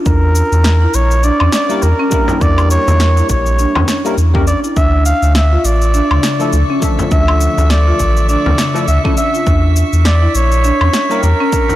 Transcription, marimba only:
0.06 0.22 D4 medium
0.82 0.94 E4 medium
1.24 1.40 D4 medium
1.41 1.98 C#4 medium
2.00 2.11 C#4 loud
2.12 2.28 D4 medium
2.29 2.36 E4 medium
2.41 2.57 D4 medium
3.17 3.29 E4 medium
3.59 3.75 D4 medium
3.76 4.33 C#4 medium
4.35 4.46 C#4 loud
4.48 4.63 D4 medium
4.64 4.71 E4 medium
4.76 4.93 D4 medium
5.52 5.64 F4 medium
5.94 6.10 D4 medium
6.11 6.68 C#3 medium
6.70 6.81 C#4 loud
7.00 7.07 F4 medium
7.12 7.28 D4 medium
7.88 7.99 F4 medium
8.29 8.45 D4 medium
8.46 9.03 C#3 medium
9.05 9.16 C#4 loud
9.18 9.34 D4 medium
9.34 9.42 F4 medium
9.47 9.63 D4 medium
10.22 10.34 E4 medium
10.64 10.81 D4 medium
10.81 11.39 C#4 medium
11.40 11.52 C#4 loud
11.70 11.76 E4 medium

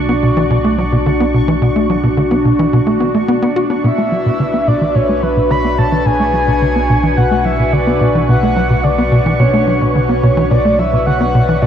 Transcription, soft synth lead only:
3.84 4.69 E5 loud
4.68 4.97 D5 loud
4.95 5.24 C#5 loud
5.23 5.52 B4 loud
5.50 5.78 B5 loud
5.78 6.07 A5 loud
6.06 7.19 G#5 loud
7.17 7.46 F#5 loud
7.45 7.74 E5 loud
7.73 8.15 D5 loud
8.28 8.85 F#5 loud
8.83 9.39 D5 loud
9.40 9.91 C#5 loud
9.95 10.52 C#5 medium
10.50 10.80 D5 loud
10.79 11.06 E5 medium
11.06 11.63 F#5 loud
11.62 11.67 D5 medium

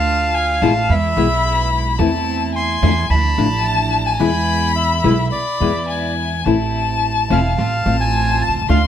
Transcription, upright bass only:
0.00 0.58 D2 loud
0.62 0.85 A1 loud
0.89 1.13 E2 loud
1.17 1.95 B1 loud
1.99 2.78 E2 loud
2.83 3.06 E2 loud
3.10 3.33 D2 loud
3.38 4.16 A1 loud
4.20 5.00 E2 loud
5.04 5.28 B1 loud
5.61 6.42 E2 loud
6.46 7.26 A1 loud
7.30 7.54 E1 loud
7.58 7.82 A1 loud
7.86 8.48 A1 loud
8.48 8.54 B1 medium
8.55 8.61 C2 medium
8.62 8.69 C#2 medium
8.69 8.87 D2 loud

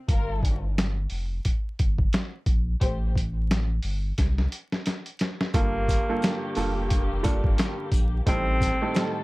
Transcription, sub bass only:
0.09 1.07 G1 loud
1.11 1.40 F1 medium
1.80 2.08 G1 medium
2.46 2.75 A#1 medium
2.82 3.80 A1 loud
3.84 4.12 G1 loud
4.18 4.47 C2 loud
5.54 6.00 G1 loud
6.57 7.40 F1 loud
7.44 7.56 G1 medium
7.92 8.21 A#1 medium
8.27 8.72 A1 loud

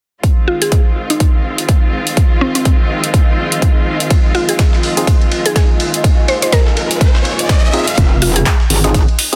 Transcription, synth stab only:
4.97 5.06 C4 medium
4.97 5.06 D#4 medium
4.97 5.06 F4 medium
4.97 5.06 G#4 loud
7.73 7.86 C4 medium
7.73 7.86 D#4 medium
7.73 7.86 F4 medium
7.73 7.86 G#4 loud
8.84 8.93 C4 medium
8.84 8.93 D#4 medium
8.84 8.93 F4 medium
8.84 8.93 G#4 loud
9.32 9.36 D#4 medium

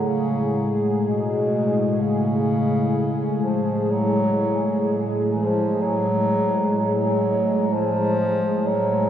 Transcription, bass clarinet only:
0.07 0.77 C#3 medium
1.06 2.02 B2 medium
2.00 3.45 C#3 medium
3.44 3.93 F3 medium
3.91 5.07 F#3 medium
5.36 5.84 F3 medium
5.82 6.77 F#3 loud
6.77 7.75 F#3 medium
7.73 8.68 F3 loud
8.67 9.10 F#3 medium

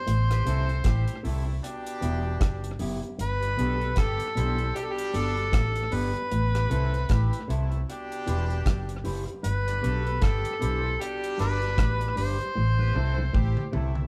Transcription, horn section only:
0.30 0.43 B3 medium
0.30 0.43 G4 medium
0.30 0.43 B4 medium
0.46 0.77 E3 medium
0.46 0.77 C4 medium
0.46 0.77 A4 medium
0.85 1.16 G3 medium
0.85 1.16 E4 medium
0.85 1.16 G4 medium
1.23 1.55 C3 medium
1.23 1.55 A3 medium
1.23 1.55 E4 medium
1.62 2.76 B2 loud
1.62 2.76 D4 loud
1.62 2.76 G4 loud
3.40 3.54 G3 medium
3.40 3.54 D4 medium
3.40 3.54 B4 medium
3.58 3.90 A3 medium
3.58 3.89 F#4 medium
3.58 3.89 A4 medium
3.97 4.28 D3 medium
3.97 4.28 B3 medium
3.97 4.29 G4 medium
4.36 4.68 E3 medium
4.36 4.67 E4 loud
4.36 4.68 C5 medium
4.75 5.89 B2 loud
4.75 5.88 G3 loud
4.75 5.89 D4 loud
6.54 6.68 B3 medium
6.54 6.67 G4 medium
6.54 6.67 B4 medium
6.69 7.01 E3 medium
6.69 7.01 C4 medium
6.69 7.01 A4 medium
7.09 7.41 G3 medium
7.09 7.41 E4 medium
7.09 7.41 G4 medium
7.49 7.80 C3 medium
7.49 7.80 A3 medium
7.49 7.80 E4 medium
7.89 9.02 B2 loud
7.89 9.02 D4 loud
7.89 9.02 G4 loud
9.66 9.80 G3 medium
9.66 9.79 D4 medium
9.66 9.80 B4 medium
9.83 10.15 A3 medium
9.83 10.14 F#4 medium
9.83 10.14 A4 loud
10.22 10.53 D3 medium
10.22 10.53 B3 medium
10.22 10.53 G4 medium
10.62 10.93 E3 medium
10.62 10.93 E4 medium
10.62 10.93 C5 medium
11.01 12.14 B2 loud
11.01 12.14 G3 loud
11.01 12.13 D4 loud
12.78 12.92 B3 medium
12.78 12.92 G4 medium
12.78 12.92 B4 medium
12.95 13.26 E3 medium
12.95 13.26 C4 medium
12.95 13.26 A4 loud
13.34 13.66 G3 medium
13.34 13.65 E4 medium
13.34 13.66 G4 medium
13.73 14.04 C3 medium
13.73 14.04 A3 medium
13.73 14.04 E4 medium

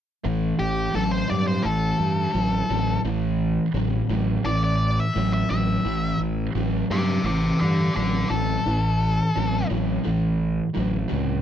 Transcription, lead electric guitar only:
0.59 0.94 G4 medium
0.95 1.11 A4 medium
1.11 1.30 C5 medium
1.30 1.47 D5 medium
1.48 1.65 C5 medium
1.63 3.00 A4 medium
4.46 4.63 D5 medium
4.64 4.98 D5 medium
5.00 5.32 E5 medium
5.34 5.49 E5 medium
5.51 6.18 E5 medium
6.91 7.25 C5 medium
6.91 7.25 E5 medium
7.26 7.58 C5 medium
7.26 7.60 E5 medium
7.60 7.93 A4 medium
7.60 7.95 D5 medium
7.95 8.28 A4 medium
7.95 8.30 D5 medium
8.30 9.67 A4 medium

